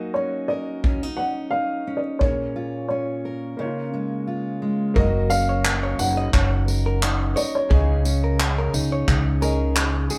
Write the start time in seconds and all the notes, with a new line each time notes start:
Already playing: F#3 A#3 D#4 F#4 D#5
0.14 C#4 C#5
0.48 A#4 D#5
0.84 C#4, kick
1.03 D#4
1.17 C#4 F#5
1.51 D#4 F5
1.87 C#4
1.97 D#5
2.19 A#2 A#3 G#4 C#5, kick
2.24 C#5
2.56 F4
2.89 C#4 C#5
3.25 A#4
3.57 C#3 A#3 D#4 C#5
3.65 F4
3.94 G#3
4.27 F4
4.62 G#3
4.94 F#1 F#3 A#3 F#4 A#4, kick
4.98 D#5
5.30 C#4 F5, tambourine
5.49 C#5
5.65 A#4, clap
5.83 C#5
5.99 F#1 D#4 F#5, tambourine
6.17 D#5
6.33 F#1 C#4 C#5, kick, clap
6.68 A#4, tambourine
6.86 A#4
7.03 D#4, clap
7.36 A#4 C#5 D#5, tambourine
7.55 C#5
7.69 C#2 C#3 C#4 G#4, kick
7.73 D#5
8.05 C#4, tambourine
8.24 A#4
8.40 G#4, clap
8.58 A#4
8.73 C#2 D#4, tambourine
8.92 C#5
9.08 C#2 C#4, kick, clap
9.41 C#4 G#4 A#4 D#5, tambourine
9.76 D#4 G#4, clap
10.10 F#4 G#4, tambourine